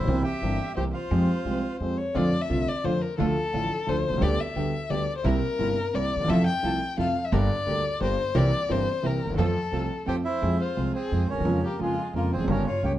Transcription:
Already playing: bandoneon E4 E5, violin C5
0.03 upright bass B1 C2, grand piano B1
0.08 grand piano C2 C3 E3 A#3 C4 G4
0.24 bandoneon G4 G5, violin E5
0.42 upright bass G1, grand piano G1 G2 E3 A#3 C4 G4
0.76 upright bass C2, grand piano C2 C3 E3 A#3 C4 G4, bandoneon C4 C5, violin G4
0.93 bandoneon F4 F5, violin C5
1.11 upright bass F2, grand piano F2 F3 G#3 C4 G4
1.45 upright bass C2, grand piano C2 C3 F3 G#3 C4 G4
1.80 upright bass F2, grand piano F2 F3 G#3 C4 G4, violin C5
1.97 violin C#5
2.14 grand piano F2 D3 F3 A3 C4 F4, upright bass F2, string section A3 D4 F4, violin D5
2.41 violin E5
2.49 grand piano C2 C3 D3 A3 C4 F4, upright bass C2, string section A3 D4 F4
2.68 violin D5
2.84 grand piano F2 D3 F3 A3 C4 F4, upright bass F2, string section A3 D4 F4, violin C5
3.02 violin A#4
3.18 grand piano D2 D3 F3 A3 F4, upright bass D2, string section A3 D4 F4, violin A4
3.53 grand piano A1 A2 D3 F3 A3 F4, upright bass A1, string section A3 D4 F4
3.87 grand piano D2 D3 F3 A3 F4, upright bass D2, string section A3 D4 F4, violin C5
4.09 grand piano B1, upright bass B1
4.13 grand piano C2, upright bass C2
4.17 grand piano C#2 D3 G3, upright bass C#2, string section B3
4.21 grand piano D2 B3 G4, upright bass D2, string section D4 G4, violin D5
4.40 violin E5
4.55 upright bass D2, grand piano D2 D3 G3 B3 G4, string section B3 D4 G4
4.90 grand piano D2 D3 G3 B3 G4, upright bass D2, string section B3 D4 G4, violin D5
5.17 violin C5
5.24 upright bass C2, grand piano C2 C3 G3 A#3 E4, string section C4 E4 A#4, violin A#4
5.59 grand piano G1 G2 C3 G3 A#3 E4, upright bass G1, string section C4 E4 A#4
5.94 grand piano C2 C3 G3 A#3 E4, upright bass C2, string section C4 E4 A#4, violin D5
6.16 grand piano D2, upright bass D2
6.20 upright bass D#2, grand piano D#2
6.24 grand piano E2 F2 C3 F3 A3 E4, upright bass E2
6.29 upright bass F2, string section E4 F4 A4, violin E5
6.47 violin G5
6.63 grand piano C2 C3 F3 A3 E4, upright bass C2, string section E4 F4 A4
6.98 grand piano F2 C3 F3 A3 E4, upright bass F2, string section E4 F4 A4, violin F5
7.25 violin E5
7.32 upright bass G1, grand piano G1 G2 D3 G3 A#3 G4, string section D4 G4 A#4, violin D5
7.66 grand piano D2 D3 G3 A#3 G4, upright bass D2, string section D4 G4 A#4
8.00 grand piano G1 G2 D3 G3 A#3 G4, upright bass G1, string section D4 G4 A#4, violin C5
8.35 upright bass C2, grand piano C2 C3 E3 A#3 C4 G4, string section C4 E4 A#4, violin D5
8.69 upright bass G1, grand piano G1 G2 E3 A#3 C4 G4, string section C4 E4 A#4, violin C5
9.03 grand piano C2 C3 E3 A#3 C4 G4, upright bass C2, string section C4 E4 A#4, violin A#4
9.25 grand piano D2, upright bass D2
9.29 upright bass D#2, grand piano D#2
9.34 upright bass E2, grand piano E2, string section C4 F4
9.38 upright bass F2, grand piano F2 F3 A3 C4 A4, violin A4, string section A4
9.72 upright bass C2, grand piano C2 C3 F3 A3 C4 A4, string section C4 F4 A4
10.06 grand piano F2 F3 A3 C4 A4, upright bass F2, string section C4 F4 A4, bandoneon G4 G5, violin C5
10.25 bandoneon E4 E5, violin C5
10.42 grand piano F2 F3 G#3 C4 G#4, upright bass F2
10.60 bandoneon F4 F5, violin C5
10.77 grand piano C2 C3 F3 G#3 C4 G#4, upright bass C2
10.95 bandoneon C4 C5, violin G#4
11.11 grand piano F2 F3 G#3 C4 G#4, upright bass F2
11.30 grand piano D2, upright bass D2, bandoneon C#4 C#5, violin A#4
11.36 grand piano D#2 E2, upright bass D#2
11.41 upright bass E2
11.45 grand piano F2 C#3 F3 G#3 A#3 F4, upright bass F2
11.64 bandoneon A#3 A#4, violin G4
11.79 grand piano F2 C#3 F3 G#3 A#3 F4, upright bass F2, bandoneon G#3 G#4, violin F4
12.14 upright bass F2, grand piano F2 C#3 F3 G#3 A#3 F4, bandoneon A#3 A#4, violin F4
12.33 upright bass E1, grand piano E2, bandoneon C4 C5, violin G#4
12.40 upright bass F1 F#1, grand piano F2 F#2
12.48 upright bass G1, grand piano G1 G2 C#3 G3 A#3 G4, bandoneon C#4 C#5, violin A#4
12.67 bandoneon F4 F5, violin C#5
12.83 upright bass C#2, grand piano C#2 C#3 G3 A#3 G4, bandoneon G4 G5, violin C#5

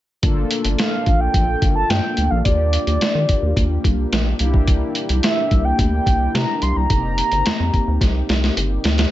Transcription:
0.22 analog synth bass G1, analog polysynth A#3 D4 F4 A4, kick, closed hi-hat
0.51 closed hi-hat
0.65 analog synth bass G1, closed hi-hat
0.79 soft synth lead F5, snare, closed hi-hat
1.06 analog synth bass A#1, kick, closed hi-hat
1.20 soft synth lead G5
1.34 analog synth bass A#1, kick, closed hi-hat
1.62 analog synth bass G1, kick, closed hi-hat
1.75 soft synth lead A5
1.90 analog synth bass G2, soft synth lead G5, snare, closed hi-hat
2.17 analog synth bass D2, closed hi-hat
2.31 analog synth bass A#1, soft synth lead F5
2.45 analog synth bass D#2, analog polysynth A#3 D4 F4 G4, soft synth lead D5, kick, closed hi-hat
2.73 closed hi-hat
2.87 analog synth bass D#2, closed hi-hat
3.01 analog synth bass D#3, snare, closed hi-hat
3.15 analog synth bass D#3
3.29 kick, closed hi-hat
3.42 analog synth bass D#2
3.56 analog synth bass D#2, kick, closed hi-hat
3.84 analog synth bass C2, kick, closed hi-hat
4.12 analog synth bass A#1, snare, closed hi-hat
4.39 analog synth bass C2, analog polysynth A#3 D4 E4 G4, closed hi-hat
4.54 kick
4.67 kick, closed hi-hat
4.95 closed hi-hat
5.09 analog synth bass C2, closed hi-hat
5.23 soft synth lead E5, snare, closed hi-hat
5.51 analog synth bass C2, kick, closed hi-hat
5.65 soft synth lead G5
5.79 analog synth bass D2, soft synth lead G5, kick, closed hi-hat
6.06 analog synth bass C2, kick, closed hi-hat
6.34 analog synth bass C3, soft synth lead A#5, snare, closed hi-hat
6.62 analog synth bass C2, soft synth lead C6, closed hi-hat
6.76 analog synth bass C2, soft synth lead A#5
6.89 analog synth bass F1, analog polysynth A3 C4 D#4 G4, kick, closed hi-hat
6.96 analog polysynth A#3
7.18 closed hi-hat
7.32 analog synth bass G1, closed hi-hat
7.46 analog synth bass F2, snare, closed hi-hat
7.60 analog synth bass F2
7.74 kick, closed hi-hat
7.88 analog synth bass D2
8.01 analog synth bass C2, kick, snare, closed hi-hat
8.29 analog synth bass C2, snare, closed hi-hat
8.44 snare
8.57 analog synth bass G1, closed hi-hat
8.84 analog synth bass D2, snare, closed hi-hat
8.98 snare, closed hi-hat

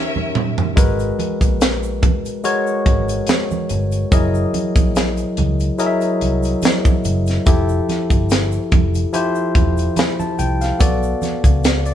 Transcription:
Already playing: tine electric piano D#3 C#4 G4 E5, string section C#4 A#4 E5
0.16 high conga, low conga
0.35 mid tom, muted conga, low conga
0.58 floor tom
0.76 fingered electric bass G#1, tine electric piano G#3 F#4 A#4 B4, kick, closed hi-hat, muted conga, shaker
0.99 closed hi-hat, shaker
1.19 closed hi-hat, muted conga, high conga
1.41 fingered electric bass A#1, kick, closed hi-hat, shaker
1.61 snare, closed hi-hat, muted conga, shaker
1.83 shaker
2.02 kick, closed hi-hat, high conga, low conga
2.25 closed hi-hat, shaker
2.44 tine electric piano G#3 F#4 A#4 C#5, closed hi-hat, muted conga, shaker
2.67 shaker
2.86 fingered electric bass G#1, kick, closed hi-hat, muted conga, high conga
3.09 closed hi-hat, shaker
3.27 snare, closed hi-hat, high conga, shaker
3.51 high conga, shaker
3.69 fingered electric bass G1, closed hi-hat, muted conga, low conga, shaker
3.92 closed hi-hat, shaker
4.11 fingered electric bass F#1, tine electric piano F#3 E4 G#4 A#4 D#5, kick, closed hi-hat, muted conga, shaker
4.35 shaker
4.54 closed hi-hat, muted conga, high conga
4.76 fingered electric bass A#1, kick, closed hi-hat, shaker
4.95 snare, closed hi-hat, shaker
5.17 closed hi-hat, shaker
5.37 fingered electric bass C#2, closed hi-hat, high conga, low conga
5.60 closed hi-hat, shaker
5.78 tine electric piano F#3 E4 G#4 A#4 D#5, closed hi-hat, shaker
5.86 tine electric piano E5
6.01 closed hi-hat, shaker
6.21 fingered electric bass C2, closed hi-hat, high conga
6.43 closed hi-hat, shaker
6.62 snare, closed hi-hat, muted conga, high conga, shaker
6.85 kick, high conga, shaker
7.04 fingered electric bass F#1, closed hi-hat, low conga, shaker
7.27 snare, closed hi-hat, shaker
7.46 fingered electric bass F1, tine electric piano F3 E4 G4 A4, kick, closed hi-hat, muted conga, shaker
7.69 shaker
7.89 snare, closed hi-hat, high conga
8.10 fingered electric bass G1, kick, closed hi-hat, shaker
8.30 snare, closed hi-hat, muted conga, shaker
8.52 shaker
8.72 fingered electric bass F1, kick, closed hi-hat, muted conga, high conga, low conga
8.94 closed hi-hat, shaker
9.13 tine electric piano F3 E4 G4 C5, closed hi-hat, muted conga, shaker
9.35 shaker
9.55 fingered electric bass E1, kick, closed hi-hat, muted conga, high conga
9.77 closed hi-hat, shaker
9.96 tine electric piano B5, snare, closed hi-hat, muted conga, high conga, shaker
10.19 tine electric piano A5, high conga, shaker
10.39 fingered electric bass C2, tine electric piano G5, closed hi-hat, low conga, shaker
10.61 tine electric piano F5, snare, closed hi-hat, shaker
10.79 fingered electric bass B1, tine electric piano B3 F#4 A4 D5, kick, closed hi-hat, shaker
11.03 shaker
11.22 snare, closed hi-hat, muted conga, high conga, shaker
11.44 fingered electric bass C#2, kick, closed hi-hat, shaker
11.64 snare, closed hi-hat, muted conga, shaker
11.85 tine electric piano D5, closed hi-hat, shaker

